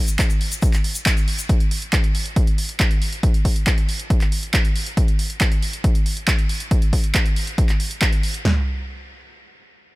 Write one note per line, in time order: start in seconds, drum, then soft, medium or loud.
0.07 closed hi-hat soft
0.07 shaker medium
0.19 kick loud
0.19 clap loud
0.19 closed hi-hat medium
0.19 shaker medium
0.30 closed hi-hat medium
0.30 shaker soft
0.41 open hi-hat medium
0.52 closed hi-hat soft
0.52 shaker medium
0.62 kick loud
0.62 closed hi-hat medium
0.62 shaker medium
0.73 clap soft
0.73 closed hi-hat soft
0.73 shaker soft
0.84 open hi-hat loud
0.95 closed hi-hat soft
0.95 shaker medium
1.06 kick loud
1.06 clap loud
1.06 closed hi-hat medium
1.06 shaker medium
1.17 closed hi-hat soft
1.17 shaker soft
1.28 open hi-hat loud
1.39 closed hi-hat medium
1.39 shaker medium
1.49 kick loud
1.49 closed hi-hat medium
1.60 closed hi-hat medium
1.71 open hi-hat loud
1.82 closed hi-hat soft
1.93 kick loud
1.93 clap loud
1.93 closed hi-hat medium
2.04 closed hi-hat medium
2.15 open hi-hat medium
2.26 closed hi-hat medium
2.36 kick loud
2.36 closed hi-hat medium
2.47 closed hi-hat medium
2.58 open hi-hat loud
2.69 closed hi-hat medium
2.80 kick loud
2.80 clap loud
2.80 closed hi-hat medium
2.91 closed hi-hat soft
3.02 open hi-hat medium
3.13 closed hi-hat soft
3.23 kick loud
3.23 closed hi-hat medium
3.34 closed hi-hat medium
3.45 kick medium
3.45 open hi-hat loud
3.56 closed hi-hat soft
3.67 kick loud
3.67 clap loud
3.67 closed hi-hat medium
3.78 closed hi-hat medium
3.89 open hi-hat medium
4.00 closed hi-hat medium
4.10 kick loud
4.10 closed hi-hat medium
4.21 clap soft
4.21 closed hi-hat medium
4.32 open hi-hat loud
4.43 closed hi-hat medium
4.54 kick loud
4.54 clap loud
4.54 closed hi-hat medium
4.65 closed hi-hat medium
4.76 open hi-hat medium
4.86 closed hi-hat medium
4.97 kick loud
4.97 closed hi-hat medium
5.08 closed hi-hat medium
5.19 open hi-hat loud
5.30 closed hi-hat medium
5.41 kick loud
5.41 clap loud
5.41 closed hi-hat medium
5.52 closed hi-hat medium
5.62 open hi-hat medium
5.73 closed hi-hat medium
5.84 kick loud
5.84 closed hi-hat loud
5.95 closed hi-hat medium
6.06 open hi-hat loud
6.17 closed hi-hat medium
6.28 kick loud
6.28 clap loud
6.28 closed hi-hat medium
6.39 closed hi-hat medium
6.49 open hi-hat medium
6.60 closed hi-hat medium
6.71 kick loud
6.71 closed hi-hat loud
6.82 closed hi-hat medium
6.93 kick medium
6.93 open hi-hat loud
7.04 closed hi-hat medium
7.15 kick loud
7.15 clap loud
7.15 closed hi-hat loud
7.26 closed hi-hat medium
7.36 open hi-hat medium
7.47 closed hi-hat medium
7.58 kick loud
7.58 closed hi-hat loud
7.69 clap soft
7.69 closed hi-hat medium
7.80 open hi-hat loud
7.91 closed hi-hat medium
8.02 kick loud
8.02 clap loud
8.02 closed hi-hat medium
8.13 closed hi-hat medium
8.23 open hi-hat medium
8.34 closed hi-hat medium
8.45 snare loud
8.45 floor tom loud